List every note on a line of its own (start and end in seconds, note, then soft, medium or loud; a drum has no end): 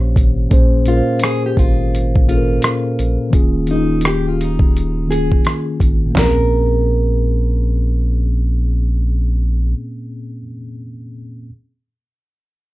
0.00 0.18 A#1 medium
0.00 0.49 A#2 medium
0.00 0.50 A#3 medium
0.00 0.51 C#4 medium
0.00 0.53 G4 medium
0.00 0.52 C#5 medium
0.16 0.47 G#1 medium
0.16 kick medium
0.16 closed hi-hat medium
0.49 1.02 A#1 loud
0.49 0.83 A#2 medium
0.49 0.83 A#3 medium
0.49 0.84 C#4 medium
0.49 0.84 G#4 medium
0.49 kick loud
0.49 closed hi-hat medium
0.53 0.85 C5 medium
0.85 2.17 A#2 medium
0.85 2.17 A#3 medium
0.85 2.18 C#4 medium
0.85 1.19 F4 medium
0.85 2.18 G#4 medium
0.85 closed hi-hat medium
0.90 0.96 A#4 medium
0.97 2.23 C5 medium
1.19 1.42 G#4 medium
1.19 closed hi-hat medium
1.24 cross-stick loud
1.46 1.57 G4 medium
1.57 2.59 G#1 medium
1.57 2.25 F4 medium
1.57 kick medium
1.57 closed hi-hat medium
1.95 closed hi-hat medium
2.16 kick medium
2.27 3.25 A#2 medium
2.27 3.26 A#3 medium
2.27 3.26 C#4 medium
2.27 3.30 F4 medium
2.27 3.27 G#4 medium
2.27 closed hi-hat medium
2.31 2.37 A4 medium
2.37 3.30 A#4 medium
2.62 cross-stick loud
2.62 closed hi-hat medium
2.99 3.18 A#1 medium
2.99 closed hi-hat medium
3.30 5.41 D#1 loud
3.30 3.65 D#3 medium
3.30 3.65 A#3 medium
3.30 3.66 C#4 medium
3.30 3.66 F4 medium
3.30 kick loud
3.30 closed hi-hat medium
3.35 3.67 G#4 medium
3.67 4.99 D#3 medium
3.67 5.00 A#3 medium
3.67 5.00 C#4 soft
3.67 4.02 D#4 medium
3.67 closed hi-hat medium
3.71 5.01 F4 medium
3.71 5.01 G#4 medium
4.01 closed hi-hat medium
4.05 4.26 G4 medium
4.05 cross-stick medium
4.28 4.41 F4 medium
4.41 5.07 D#4 medium
4.41 closed hi-hat medium
4.59 kick medium
4.77 closed hi-hat medium
5.07 6.07 D#3 medium
5.07 6.08 A#3 medium
5.07 6.08 C#4 medium
5.07 6.09 F4 medium
5.07 5.64 G#4 medium
5.12 6.09 G#4 medium
5.12 closed hi-hat medium
5.32 kick medium
5.45 cross-stick medium
5.45 closed hi-hat medium
5.80 6.12 G#1 medium
5.80 kick medium
5.80 closed hi-hat medium
6.06 10.39 A#2 medium
6.11 10.41 A#3 medium
6.15 9.74 A#1 medium
6.15 10.43 C4 medium
6.15 8.25 A#4 medium
6.15 snare medium
6.15 floor tom medium
6.19 10.46 C#4 medium
6.24 10.48 G#4 medium